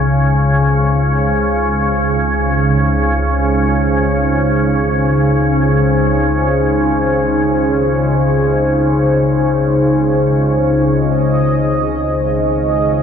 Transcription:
0.00 10.86 C#2 medium
0.00 10.85 C#3 medium
0.00 13.03 C#3 medium
0.00 13.03 D#4 medium
0.00 13.03 G#4 medium
0.00 13.03 C5 medium
10.87 13.03 C#2 medium
10.87 13.03 C#3 medium
10.87 13.03 D#5 medium

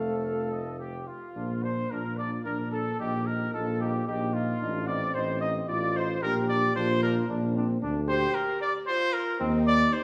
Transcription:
0.00 1.05 F1 medium
0.00 1.05 F3 medium
0.00 1.08 A3 medium
0.00 0.79 A4 medium
0.00 0.16 F5 medium
0.23 0.49 F5 medium
0.51 0.78 D#5 medium
0.79 1.09 G4 medium
0.79 1.06 G4 medium
1.07 1.65 F4 medium
1.07 1.62 F4 medium
1.36 1.85 A#1 medium
1.36 1.49 D4 medium
1.63 1.76 D4 soft
1.63 1.92 C5 medium
1.90 2.39 A#1 medium
1.90 2.03 D4 medium
1.90 2.47 F4 medium
1.90 2.19 A#4 medium
1.90 2.18 A#4 medium
2.17 2.31 D4 medium
2.17 2.43 D5 medium
2.17 2.31 D5 medium
2.44 2.93 A#1 medium
2.44 3.02 D4 medium
2.44 2.58 D4 medium
2.44 2.71 A#4 medium
2.44 2.58 A#4 medium
2.72 2.85 D4 medium
2.72 3.01 A4 medium
2.72 2.99 A4 medium
2.99 3.47 A#1 medium
2.99 3.53 D#4 medium
2.99 3.13 D#4 medium
2.99 3.28 G4 medium
3.26 3.39 D#4 medium
3.26 3.53 A#4 medium
3.53 4.01 A#1 medium
3.53 3.66 D#4 medium
3.53 4.07 F4 medium
3.53 3.83 A4 medium
3.53 3.80 A4 medium
3.80 3.93 D#4 medium
3.80 4.06 G4 medium
3.80 4.07 G4 medium
4.07 4.55 A#1 medium
4.07 4.63 D#4 medium
4.07 4.20 D#4 medium
4.07 4.35 G4 medium
4.07 4.20 G4 medium
4.33 4.46 D#4 medium
4.33 4.87 F4 medium
4.33 4.90 F4 medium
4.61 5.09 A1 medium
4.61 4.89 D4 medium
4.61 4.73 D#4 medium
4.87 5.68 C4 medium
4.87 5.01 D#4 medium
4.87 5.16 D5 loud
4.87 5.16 D5 medium
5.14 5.63 A1 medium
5.14 5.27 D#4 medium
5.14 5.40 C5 medium
5.14 5.42 C5 medium
5.41 5.54 D#4 medium
5.41 5.53 D#5 loud
5.41 5.68 D#5 medium
5.68 6.17 A1 medium
5.68 5.81 D#4 medium
5.68 6.22 F4 medium
5.68 5.98 D5 loud
5.68 5.95 D5 medium
5.96 6.08 D#4 medium
5.96 6.24 C5 loud
5.96 6.22 C5 medium
6.22 6.70 A#1 medium
6.22 6.34 D4 medium
6.22 6.75 G4 loud
6.22 6.48 A#4 medium
6.22 6.35 A#4 loud
6.49 6.61 D4 medium
6.49 6.77 D5 medium
6.49 6.75 D5 loud
6.76 7.23 A#1 medium
6.76 6.88 D4 medium
6.76 7.28 F4 medium
6.76 7.02 C5 loud
6.76 7.02 C5 medium
7.02 7.15 D4 medium
7.02 7.28 A#4 medium
7.02 7.15 A#4 loud
7.28 7.76 A#1 medium
7.28 7.57 D4 medium
7.28 7.41 D4 medium
7.56 7.82 C4 medium
7.56 7.68 D4 medium
7.82 8.26 D2 loud
7.82 7.94 D4 medium
7.82 8.01 D4 medium
8.08 8.59 G4 loud
8.08 8.33 C5 medium
8.08 8.36 C5 loud
8.34 8.60 A#4 medium
8.34 8.61 A#4 loud
8.60 8.72 D5 medium
8.60 8.73 D5 loud
8.86 9.37 F4 medium
8.86 9.12 C5 loud
8.86 9.15 C5 loud
9.13 9.39 A#4 medium
9.13 9.40 A#4 loud
9.40 9.84 D#2 loud
9.40 9.58 C4 medium
9.40 9.92 D#4 loud
9.66 9.78 D5 loud
9.66 9.94 D5 loud
9.92 10.04 D#4 loud
9.92 10.04 C5 medium
9.92 10.04 C5 loud

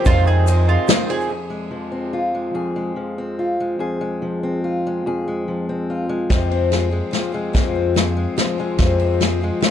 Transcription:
0.05 1.26 F1 medium
0.05 0.47 F2 medium
0.05 0.75 F2 loud
0.05 1.26 F2 medium
0.05 0.48 C3 medium
0.05 0.46 D#3 medium
0.05 0.24 F3 medium
0.05 0.47 G#3 medium
0.05 0.24 C4 medium
0.05 0.48 C4 medium
0.05 0.24 D#4 medium
0.05 0.27 F4 loud
0.05 0.48 F4 medium
0.05 0.24 G#4 medium
0.05 0.25 C5 loud
0.05 kick loud
0.05 ride medium
0.05 shaker medium
0.25 0.46 F3 medium
0.25 0.46 C4 medium
0.25 0.46 D#4 medium
0.25 0.46 G#4 medium
0.25 0.68 G#4 medium
0.25 0.46 C5 medium
0.25 shaker soft
0.47 0.88 D#3 medium
0.47 0.66 F3 medium
0.47 0.89 G#3 medium
0.47 0.66 C4 medium
0.47 0.90 C4 medium
0.47 0.66 D#4 medium
0.47 0.90 F4 medium
0.47 0.67 G#4 medium
0.47 0.66 D#5 medium
0.47 ride medium
0.47 shaker medium
0.68 0.86 F3 medium
0.68 0.86 C4 medium
0.68 0.86 D#4 medium
0.68 1.09 F4 medium
0.68 0.87 G#4 medium
0.68 0.88 D#5 medium
0.88 1.10 D#3 medium
0.88 1.07 F3 medium
0.88 1.10 G#3 medium
0.88 1.07 C4 medium
0.88 1.09 C4 medium
0.88 1.07 D#4 medium
0.88 1.07 G#4 medium
0.88 1.08 C5 loud
0.88 snare medium
0.88 ride medium
0.88 shaker medium
0.92 1.07 F4 medium
1.08 1.32 D#3 soft
1.08 1.29 F3 medium
1.08 1.31 G#3 soft
1.08 1.29 C4 medium
1.08 1.31 C4 medium
1.08 1.29 D#4 medium
1.08 1.30 F4 soft
1.08 1.29 G#4 medium
1.08 1.30 G#4 medium
1.08 1.29 C5 medium
1.08 ride medium
1.08 shaker soft
1.21 shaker soft
1.29 2.54 F2 soft
1.29 2.13 G#4 soft
1.50 2.34 G#3 soft
1.71 2.96 F3 soft
1.92 3.18 C4 soft
2.13 2.54 F4 soft
2.35 2.76 G#3 soft
2.54 3.79 F2 soft
2.54 3.39 G#4 soft
2.76 3.60 G#3 soft
2.96 4.22 F3 soft
3.18 4.43 C4 soft
3.39 3.80 F4 soft
3.60 4.01 G#3 soft
3.79 5.06 F2 medium
3.79 4.64 G#4 medium
4.01 4.86 G#3 soft
4.22 5.48 F3 soft
4.43 5.68 C4 soft
4.64 5.07 F4 soft
4.87 5.27 G#3 soft
5.06 6.29 F2 medium
5.06 5.89 G#4 medium
5.28 6.08 G#3 soft
5.48 6.28 F3 soft
5.69 6.50 C4 soft
5.90 6.71 F4 soft
6.09 6.91 G#3 soft
6.30 6.72 F2 medium
6.30 7.00 F2 medium
6.30 7.53 F2 medium
6.30 6.72 C3 medium
6.30 6.70 F3 medium
6.30 6.71 G#3 medium
6.30 6.71 C4 medium
6.30 6.72 F4 medium
6.30 kick medium
6.30 snare soft
6.30 ride soft
6.51 7.75 C4 soft
6.51 ride soft
6.70 6.92 F3 soft
6.70 6.91 G#3 soft
6.70 6.90 C4 medium
6.70 6.89 F4 medium
6.70 7.96 G#4 soft
6.70 snare soft
6.70 ride soft
6.90 7.10 F3 soft
6.90 7.11 G#3 soft
6.90 7.34 G#3 soft
6.90 7.12 C4 soft
6.90 7.12 F4 soft
7.11 7.33 F3 medium
7.11 8.37 F3 soft
7.11 7.33 G#3 medium
7.11 7.32 C4 medium
7.11 7.31 F4 medium
7.11 snare soft
7.11 ride soft
7.32 7.53 F3 soft
7.32 8.16 G#3 soft
7.32 7.53 G#3 soft
7.32 7.54 C4 soft
7.32 7.54 F4 soft
7.53 7.96 F2 medium
7.53 8.80 F2 medium
7.53 8.24 F2 medium
7.53 7.96 C3 medium
7.53 7.94 F3 medium
7.53 7.95 G#3 medium
7.53 7.96 C4 medium
7.53 7.97 F4 medium
7.53 kick medium
7.53 snare medium
7.53 ride medium
7.75 9.01 C4 soft
7.94 8.36 F3 medium
7.94 8.37 G#3 medium
7.94 8.37 C4 medium
7.94 8.39 F4 medium
7.94 9.22 G#4 soft
7.94 snare medium
7.94 ride medium
8.17 8.59 G#3 medium
8.36 8.58 F3 medium
8.36 9.63 F3 medium
8.36 8.59 G#3 medium
8.36 8.58 C4 medium
8.36 8.57 F4 medium
8.36 snare medium
8.36 ride medium
8.58 8.78 F3 soft
8.58 9.43 G#3 soft
8.58 8.78 G#3 soft
8.58 8.78 C4 soft
8.58 8.79 F4 soft
8.78 9.21 F2 medium
8.78 9.49 F2 medium
8.78 9.71 F2 medium
8.78 9.21 C3 medium
8.78 9.20 F3 medium
8.78 9.21 G#3 medium
8.78 9.21 C4 medium
8.78 9.23 F4 medium
8.78 kick medium
8.78 snare medium
8.78 ride medium
9.00 9.71 C4 medium
9.00 ride medium
9.20 9.42 F3 medium
9.20 9.42 G#3 medium
9.20 9.41 C4 medium
9.20 9.40 F4 medium
9.20 9.71 G#4 soft
9.20 snare medium
9.20 ride medium
9.41 9.59 F3 soft
9.41 9.61 G#3 soft
9.41 9.71 G#3 medium
9.41 9.62 C4 soft
9.41 9.62 F4 soft
9.61 9.71 F3 medium
9.61 9.71 G#3 medium
9.61 9.71 C4 medium
9.61 9.71 F4 medium
9.61 snare medium
9.61 ride medium

